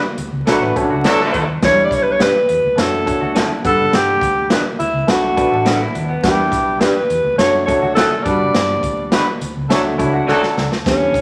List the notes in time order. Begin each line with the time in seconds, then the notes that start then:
0.18 D2, closed hi-hat
0.32 C#2
0.45 B1 F#3 A3 D4 F#4 A4 B4 C#5, snare, closed hi-hat
0.62 A1 B4
0.76 B1 A3 C#4 F#4 A4 C#5, kick, closed hi-hat
0.82 D4
0.90 C#2 F#4
1.04 F#3 D4 E4 A4 B4, snare, closed hi-hat
1.20 D4
1.34 D#2, kick, closed hi-hat
1.62 E2 F#3 D4 E4 B4 C#5, kick, snare, closed hi-hat
1.70 G3
1.84 D5
1.91 B1 C#5, kick, snare, closed hi-hat
2.02 B4
2.11 C#5
2.19 D4 G4 B4, snare, closed hi-hat
2.49 E2, closed hi-hat
2.64 D2
2.77 F#2 A3 D4 F#4 A4 C#5, snare, closed hi-hat
3.06 A3 D4 F#4 A4 C#5, kick, closed hi-hat
3.21 D2 F#4
3.35 C#4 E4 F#4 A4, snare, closed hi-hat
3.51 D4
3.64 G1 G3 D4 A4 B4 F#5, kick, closed hi-hat
3.79 F#1
3.93 G1 G4, snare, closed hi-hat
4.21 D2, kick, closed hi-hat
4.50 D4 F#4 B4, snare, closed hi-hat
4.79 D2 E4, closed hi-hat
4.93 C#2
5.07 B1 A3 D4 F#4 B4, snare, closed hi-hat
5.36 A3 D4 F#4 B4 D5, kick, closed hi-hat
5.52 A1 A4
5.65 D4 F#4 A4 B4, snare, closed hi-hat
5.81 E4
5.95 D#2 D4, closed hi-hat
6.09 B3
6.23 E2 G3 D4 E4 G4 A#4, kick, snare, closed hi-hat
6.31 B4
6.51 B1, kick, snare, closed hi-hat
6.81 D4 G4 B4, snare, closed hi-hat
7.10 E2, closed hi-hat
7.24 D2
7.38 F#2 A3 D4 F#4 C#5, snare, closed hi-hat
7.66 A3 D4 F#4 A4 C#5, kick, closed hi-hat
7.82 D2 F#4
7.95 C#4 E4 F#4 A4, snare, closed hi-hat
8.10 D4
8.24 G1 G3 D4 F#4 B4 D5, kick, closed hi-hat
8.39 F#1
8.54 G1, snare, closed hi-hat
8.83 D2, kick, closed hi-hat
9.11 G3 D4 F#4 B4, snare, closed hi-hat
9.41 D2, closed hi-hat
9.56 C#2
9.69 D2 F#3 A3 D4 F#4 A4 C#5, snare, closed hi-hat
9.98 C#2 A3 D4 E4 F#4 C#5, kick, closed hi-hat
10.13 F#4
10.27 D2 F#3 C#4 D4 F#4 A4, snare
10.42 A4, snare
10.57 C#2, snare
10.71 D2, snare
10.86 E2 D3 E3 B3 C#4 G4, kick, snare, closed hi-hat
11.14 B1, kick, closed hi-hat